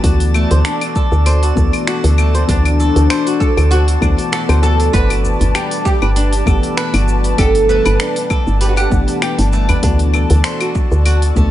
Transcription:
Already playing: synth texture D4 D5, analog synth pad D5
0.02 fm bass D2, felt piano B2 E3 A3 D4 F#4, nylon-string guitar F#4, analog synth pad F#4 A4 A5, kick, open hi-hat, shaker
0.20 open hi-hat
0.34 nylon-string guitar A3, claves, shaker
0.51 fm bass D2, nylon-string guitar C5, open hi-hat, shaker
0.65 nylon-string guitar D4, finger snap, open hi-hat, shaker
0.81 open hi-hat, claves, shaker
0.96 nylon-string guitar A4, kick, shaker
1.12 fm bass D2, shaker
1.26 nylon-string guitar C5, open hi-hat, claves, shaker
1.43 nylon-string guitar F#4, open hi-hat, shaker
1.55 fm bass D2, felt piano B2 E3 A3 D4 A4, kick, shaker
1.73 open hi-hat, claves, shaker
1.87 nylon-string guitar F#4, finger snap, open hi-hat, shaker
2.04 fm bass D2, open hi-hat
2.18 nylon-string guitar A3, claves, shaker
2.35 nylon-string guitar C5, open hi-hat, shaker
2.46 fm bass D2, felt piano B2 E3 A3 D4, nylon-string guitar D4, oud D4, analog synth pad C5, kick, open hi-hat, shaker
2.50 felt piano F#4
2.65 open hi-hat, claves
2.80 nylon-string guitar A4, shaker
2.96 fm bass D2, open hi-hat, shaker
3.10 nylon-string guitar C5, finger snap, open hi-hat, claves, shaker
3.27 nylon-string guitar F#4, open hi-hat, shaker
3.40 oud A4, kick, shaker
3.57 fm bass D2, open hi-hat, claves, shaker
3.71 oud F#4, nylon-string guitar F#4, open hi-hat, shaker
3.88 open hi-hat, shaker
4.00 fm bass D2, felt piano B2 E3 A3 D4 F#4, nylon-string guitar D4, kick, claves, shaker
4.18 open hi-hat, shaker
4.32 oud F#4, nylon-string guitar A4, finger snap, open hi-hat, shaker
4.48 fm bass D2, felt piano B2 E3 A3 D4 F#4, nylon-string guitar C5, open hi-hat, claves
4.63 oud A4, nylon-string guitar A4, shaker
4.79 nylon-string guitar D4, open hi-hat, shaker
4.91 fm bass G1, felt piano B2 E3 A3 D4, analog synth pad G3 B4 D5, oud B4, nylon-string guitar B4, kick, open hi-hat, shaker
4.95 felt piano F#5
5.10 nylon-string guitar F#4, open hi-hat, claves
5.24 djembe tone, shaker
5.41 fm bass G1, open hi-hat, djembe bass, shaker
5.55 nylon-string guitar G4, finger snap, open hi-hat, claves, shaker
5.71 open hi-hat, shaker
5.85 nylon-string guitar A3, oud G4, kick, djembe slap, shaker
6.02 fm bass G1, nylon-string guitar B4, claves, shaker
6.16 nylon-string guitar D4, open hi-hat, shaker
6.33 open hi-hat, shaker
6.45 fm bass G1, felt piano B2 E3 A3 D4 F#5, nylon-string guitar A4, kick, djembe bass, claves, shaker
6.63 open hi-hat, djembe slap, djembe tone, shaker
6.77 nylon-string guitar B4, finger snap, open hi-hat, shaker
6.94 fm bass G1, nylon-string guitar F#4, open hi-hat, claves
7.08 shaker
7.24 open hi-hat, djembe slap, shaker
7.36 fm bass G1, felt piano B2 E3 A3 D4, nylon-string guitar G4, oud A4, kick, open hi-hat, claves, shaker
7.40 felt piano F#5
7.55 open hi-hat
7.69 nylon-string guitar A3, oud B4, djembe tone, shaker
7.85 fm bass G1, nylon-string guitar B4, open hi-hat, claves, shaker
8.00 nylon-string guitar D4, finger snap, open hi-hat, shaker
8.16 open hi-hat, shaker
8.30 nylon-string guitar A4, kick, djembe slap, claves, shaker
8.47 fm bass G1, shaker
8.61 oud G4, nylon-string guitar B4, open hi-hat, shaker
8.69 oud F#4
8.76 oud G4, nylon-string guitar F#5, open hi-hat, claves, shaker
8.90 fm bass G1, felt piano B2 E3 A3 D4 F#5, kick, shaker
9.08 open hi-hat, djembe slap, shaker
9.22 nylon-string guitar G4, finger snap, open hi-hat, claves, shaker
9.39 fm bass G1, open hi-hat
9.53 nylon-string guitar A3, djembe slap, shaker
9.69 nylon-string guitar B4, open hi-hat, djembe bass, claves, shaker
9.81 fm bass D2, felt piano B2 E3 A3 D4 F#4, nylon-string guitar D4, analog synth pad F#4 A4, kick, open hi-hat, shaker
9.99 open hi-hat
10.14 nylon-string guitar A4, djembe tone, claves, shaker
10.30 fm bass D2, open hi-hat, djembe bass, shaker
10.44 nylon-string guitar C5, finger snap, open hi-hat, shaker
10.61 nylon-string guitar F#4, open hi-hat, claves, shaker
10.75 kick, djembe slap, shaker
10.91 fm bass D2, shaker
11.06 nylon-string guitar F#4, open hi-hat, claves, shaker
11.22 open hi-hat, shaker
11.35 fm bass D2, felt piano B2 E3 A3 D4, nylon-string guitar A3, kick, djembe bass, shaker
11.39 felt piano A4

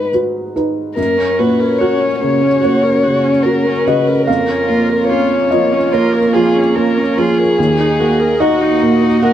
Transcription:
Already playing: felt piano G#2 D#4 F#4 B4
0.14 felt piano F#4 B4
0.56 felt piano D#4 B4
0.96 felt piano F#2, viola A#3, analog synth pad C#4 F#4 C#5, violin A#4
1.17 viola C#4
1.39 felt piano A#2, viola F#4, violin B4
1.59 viola A#4
1.79 felt piano F#4 A#4, viola F#4, violin C#5
2.00 viola C#4
2.20 felt piano C#3, viola A#3, violin C#5
2.41 viola C#4
2.62 felt piano A#3 C#5, viola F#4
2.83 viola A#4
3.03 felt piano C#3, viola F#4
3.23 viola C#4
3.43 viola A#3, felt piano F#4, violin A#4
3.66 viola C#4
3.85 felt piano C#3 D#5, viola F#4, violin B4
4.07 viola A#4
4.27 felt piano F2 F5, viola A#3, analog synth pad A#3 F4 C#5, violin A#4
4.49 viola C#4
4.69 felt piano A#3, viola F4
4.89 viola A#4
5.08 felt piano C#4, viola F4, violin C#5
5.31 viola C#4
5.51 felt piano F3 D#5, viola A#3
5.73 viola C#4
5.93 felt piano A#3 C#5, viola F4, violin A#4
6.14 viola A#4
6.33 felt piano F3, viola F4, violin G#4
6.55 viola C#4
6.75 viola A#3, felt piano C#4, violin A#4
6.97 viola C#4
7.17 felt piano F3, viola F4, violin G#4
7.38 viola A#4
7.58 felt piano D#2, analog synth pad A#3 D#4 D#5, viola A#3
7.80 viola D#4
8.00 felt piano A#3, viola F#4
8.20 viola A#4
8.40 felt piano D#4 D#5, violin F#4, viola F#4
8.61 viola D#4
8.82 felt piano A#2, viola A#3
9.01 viola D#4
9.22 felt piano A#3 F#5, viola F#4, violin A#4

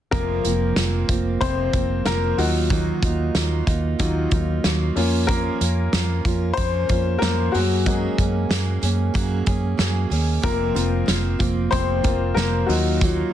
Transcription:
0.11 fingered electric bass F1, steel-string acoustic guitar F2 C3 F3 A#3 C4 F4, upright piano A#3 C4 F4 A#4, kick, closed hi-hat
0.44 fingered electric bass F1, steel-string acoustic guitar F3 A#3 C4 F4, closed hi-hat
0.76 fingered electric bass F1, steel-string acoustic guitar F3 A#3 C4 F4, snare, closed hi-hat
1.09 fingered electric bass F1, steel-string acoustic guitar F3 A#3 C4 F4, kick, closed hi-hat
1.41 fingered electric bass F1, steel-string acoustic guitar F2 C3 C4 F4, upright piano C4 C5, kick, closed hi-hat
1.73 fingered electric bass F1, steel-string acoustic guitar F3 A#3 C4 F4, kick, closed hi-hat
2.06 fingered electric bass F1, steel-string acoustic guitar F3 A#3 C4 F4, upright piano A#3 A#4, snare, closed hi-hat
2.37 fingered electric bass D#2, upright piano F#3 D#4 F4 F#4, steel-string acoustic guitar D#4 F4, open hi-hat
2.42 steel-string acoustic guitar A#3
2.70 steel-string acoustic guitar D#3 F#3 A#3 D#4 F4, kick, closed hi-hat
3.02 fingered electric bass D#2, steel-string acoustic guitar A#3 D#4 F4, kick, closed hi-hat
3.35 fingered electric bass D#2, steel-string acoustic guitar F#3 A#3 D#4 F4, snare, closed hi-hat
3.67 fingered electric bass D#2, steel-string acoustic guitar A#3 D#4 F4, kick, closed hi-hat
3.99 fingered electric bass D#2, steel-string acoustic guitar D#3 F#3 A#3 D#4 F4, upright piano F#3 D#4 F4, kick, closed hi-hat
4.31 fingered electric bass D#2, steel-string acoustic guitar A#3 D#4 F4, kick, closed hi-hat
4.64 fingered electric bass D#2, steel-string acoustic guitar F#3 A#3 D#4 F4, snare, closed hi-hat
4.96 fingered electric bass F2, upright piano A#3 C#4 F4, steel-string acoustic guitar A#3 C#4 F4, open hi-hat
5.27 steel-string acoustic guitar F3 A#3 C#4, upright piano A#3 A#4, kick, closed hi-hat
5.31 steel-string acoustic guitar F4
5.61 fingered electric bass F2, steel-string acoustic guitar A#3 C#4 F4, closed hi-hat
5.93 fingered electric bass F2, steel-string acoustic guitar F3 A#3 C#4 F4, snare, closed hi-hat
6.25 fingered electric bass F2, steel-string acoustic guitar A#3 C#4 F4, kick, closed hi-hat
6.54 fingered electric bass F2, upright piano C5, closed hi-hat
6.58 steel-string acoustic guitar F3 A#3 C#4 F4, kick
6.89 fingered electric bass F2, steel-string acoustic guitar A#3 C#4 F4, kick, closed hi-hat
7.19 fingered electric bass F2, steel-string acoustic guitar F3, upright piano A#3 A#4, snare, closed hi-hat
7.23 steel-string acoustic guitar A#3 C#4 F4
7.52 fingered electric bass F#2, upright piano F#3 F#4, steel-string acoustic guitar C#4 G#4, open hi-hat
7.57 steel-string acoustic guitar A#3
7.86 steel-string acoustic guitar F#3 A#3 C#4 G#4, upright piano G#3 A#3 F#4, kick, closed hi-hat
8.18 fingered electric bass F#2, steel-string acoustic guitar A#3 C#4 G#4, kick, closed hi-hat
8.49 fingered electric bass F#2, steel-string acoustic guitar F#3 A#3 C#4 G#4, snare, closed hi-hat
8.81 fingered electric bass F#2, steel-string acoustic guitar A#3 C#4 G#4, closed hi-hat
9.14 fingered electric bass F#2, steel-string acoustic guitar F#3 A#3 C#4 G#4, kick, closed hi-hat
9.46 fingered electric bass F#2, steel-string acoustic guitar A#3 C#4 G#4, kick, closed hi-hat
9.78 fingered electric bass F#2, steel-string acoustic guitar F#3 A#3 C#4 G#4, snare, closed hi-hat
10.10 fingered electric bass D#2, steel-string acoustic guitar A#3 C#4 G#4, open hi-hat
10.42 fingered electric bass F1, steel-string acoustic guitar F2 C3 F3 A#3 C4 F4, upright piano A#3 A#4, kick, closed hi-hat
10.75 fingered electric bass F1, steel-string acoustic guitar F3 A#3 C4 F4, upright piano A#3 C4 F4, closed hi-hat
11.06 fingered electric bass F1, steel-string acoustic guitar F3 A#3 C4 F4, snare, closed hi-hat
11.39 fingered electric bass F1, steel-string acoustic guitar F3 A#3 C4 F4, kick, closed hi-hat
11.71 fingered electric bass F1, steel-string acoustic guitar F2 C3 F3 A#3 C4 F4, upright piano C4 C5, kick, closed hi-hat
12.03 fingered electric bass F1, steel-string acoustic guitar F3 A#3 C4 F4, upright piano A#3 C4 F4, kick, closed hi-hat
12.34 fingered electric bass F1, steel-string acoustic guitar F3 A#3 C4, upright piano A#3 A#4, snare, closed hi-hat
12.39 steel-string acoustic guitar F4
12.66 fingered electric bass D#2, upright piano F#3 D#4 F4 F#4, steel-string acoustic guitar F4, open hi-hat
12.71 steel-string acoustic guitar A#3 D#4
13.01 steel-string acoustic guitar D#3 F#3 A#3 D#4 F4, kick, closed hi-hat

